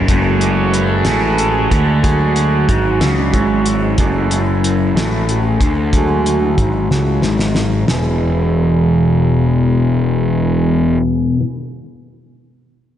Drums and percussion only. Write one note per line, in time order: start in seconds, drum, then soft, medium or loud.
0.08 kick loud
0.08 closed hi-hat medium
0.41 closed hi-hat medium
0.74 closed hi-hat medium
1.05 snare medium
1.05 closed hi-hat medium
1.38 closed hi-hat medium
1.72 kick medium
1.72 closed hi-hat soft
2.04 kick medium
2.04 closed hi-hat medium
2.36 closed hi-hat medium
2.69 kick medium
2.69 closed hi-hat medium
3.01 snare medium
3.01 closed hi-hat medium
3.34 kick medium
3.34 closed hi-hat soft
3.66 closed hi-hat medium
3.98 kick loud
3.98 closed hi-hat medium
4.31 closed hi-hat medium
4.64 closed hi-hat medium
4.97 snare medium
4.97 closed hi-hat medium
5.29 closed hi-hat medium
5.61 kick medium
5.61 closed hi-hat medium
5.93 kick medium
5.93 closed hi-hat medium
6.26 closed hi-hat medium
6.58 kick medium
6.58 closed hi-hat medium
6.91 snare soft
7.22 snare medium
7.39 snare medium
7.55 snare medium
7.88 snare medium